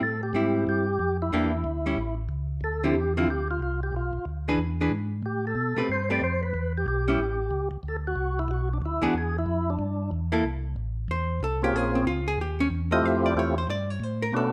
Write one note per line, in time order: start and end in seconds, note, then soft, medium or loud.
0.01 0.33 A2 medium
0.01 0.21 A4 medium
0.23 0.64 G4 medium
0.33 0.65 G#2 medium
0.33 0.83 G3 medium
0.33 0.84 C4 medium
0.33 0.84 E4 medium
0.67 0.99 G2 medium
0.67 1.17 G4 medium
0.99 1.31 F2 medium
1.22 2.15 E4 medium
1.32 1.64 E2 medium
1.32 1.51 E3 medium
1.32 1.51 A#3 medium
1.32 1.51 D4 medium
1.32 1.51 G4 medium
1.64 1.96 D2 medium
1.86 1.97 G3 medium
1.86 1.97 C#4 medium
1.86 1.97 E4 medium
1.96 2.29 A1 medium
2.29 2.61 C#2 medium
2.61 2.93 D2 medium
2.61 2.84 A4 medium
2.84 2.94 D3 medium
2.84 2.95 F3 medium
2.84 2.95 C4 medium
2.84 2.95 E4 medium
2.84 3.14 G4 loud
2.94 3.26 E2 medium
3.17 3.27 D3 soft
3.17 3.27 F3 medium
3.17 3.27 C4 medium
3.17 3.28 E4 medium
3.17 3.28 F4 medium
3.27 3.59 D2 medium
3.27 3.48 G4 medium
3.51 3.61 F4 medium
3.59 3.92 C2 medium
3.59 3.80 F4 medium
3.83 3.95 G4 medium
3.92 4.12 B1 medium
3.92 4.25 F4 medium
4.13 4.19 B1 soft
4.25 4.57 D2 medium
4.48 4.58 E3 medium
4.48 4.58 D4 medium
4.48 4.58 G#4 medium
4.48 4.59 B4 medium
4.58 4.90 E2 medium
4.81 4.91 E3 medium
4.81 4.91 D4 medium
4.81 4.91 G#4 medium
4.81 4.91 B4 medium
4.90 5.22 G#2 medium
5.23 5.55 A2 medium
5.23 5.46 G4 medium
5.47 5.87 A4 loud
5.55 5.74 B2 medium
5.76 5.83 B2 soft
5.76 5.88 A3 soft
5.76 5.88 C4 medium
5.76 5.88 G4 medium
5.76 5.88 B4 medium
5.88 6.20 G2 medium
5.88 6.09 C5 medium
6.10 6.21 A3 medium
6.10 6.21 C4 medium
6.10 6.21 G4 medium
6.10 6.21 B4 medium
6.10 6.22 D5 medium
6.21 6.53 F2 medium
6.21 6.41 C5 loud
6.43 6.73 B4 medium
6.54 6.86 E2 medium
6.77 6.87 G4 medium
6.86 7.18 B1 medium
6.86 7.69 G4 medium
7.08 7.18 G3 medium
7.08 7.19 C#4 medium
7.08 7.19 E4 medium
7.18 7.50 A1 medium
7.51 7.70 C#2 medium
7.71 7.77 C#2 soft
7.83 8.15 D2 medium
7.88 7.97 A4 medium
8.07 8.39 F#4 medium
8.16 8.48 C2 medium
8.39 8.51 E4 medium
8.48 8.80 B1 medium
8.48 8.69 F#4 medium
8.73 8.78 D4 medium
8.82 9.01 D2 medium
8.82 9.04 E4 medium
9.02 9.08 D2 soft
9.02 9.13 E3 medium
9.02 9.13 B3 medium
9.02 9.13 D4 medium
9.02 9.14 G#4 medium
9.07 9.16 F#4 medium
9.14 9.46 E2 medium
9.14 9.37 G#4 medium
9.39 9.70 E4 medium
9.46 9.78 F2 medium
9.70 10.10 D4 medium
9.79 10.11 G2 medium
10.11 10.43 E2 medium
10.32 10.43 A#3 medium
10.32 10.43 E4 medium
10.32 10.44 A4 medium
10.44 10.76 C2 medium
10.76 11.08 A1 medium
11.08 11.40 E2 medium
11.08 11.40 C5 medium
11.40 11.73 C2 medium
11.40 11.62 A4 medium
11.62 12.04 A#3 medium
11.62 12.05 C4 medium
11.62 12.05 C#4 soft
11.62 12.05 F4 medium
11.62 11.76 G4 medium
11.62 12.05 G#4 medium
11.73 12.05 A#1 medium
11.73 11.95 G#4 medium
11.95 12.07 C4 medium
12.06 12.38 C#2 medium
12.06 12.27 F4 medium
12.28 12.39 G#4 medium
12.38 12.70 D#2 medium
12.38 12.60 G4 medium
12.60 12.67 C#4 medium
12.70 13.02 E2 medium
12.92 13.34 A3 medium
12.92 13.34 C4 medium
12.92 13.34 E4 medium
12.92 13.34 F4 medium
12.92 13.35 G4 medium
12.92 13.06 D#5 medium
13.03 13.35 F2 medium
13.03 13.24 E5 medium
13.26 13.37 D5 medium
13.34 13.67 E2 medium
13.34 13.55 A3 medium
13.34 13.55 C4 medium
13.34 13.55 E4 medium
13.34 13.55 F4 medium
13.34 13.55 G4 medium
13.39 13.57 C#5 medium
13.58 13.69 C5 medium
13.67 14.00 G2 medium
13.67 13.90 D5 medium
13.90 14.03 C#5 medium
14.00 14.32 A2 medium
14.00 14.22 C5 medium
14.22 14.34 A#4 medium
14.32 14.52 B2 medium
14.32 14.52 A3 medium
14.32 14.52 B3 medium
14.32 14.52 C#4 medium
14.32 14.52 D4 medium
14.32 14.52 F#4 medium
14.36 14.52 A4 medium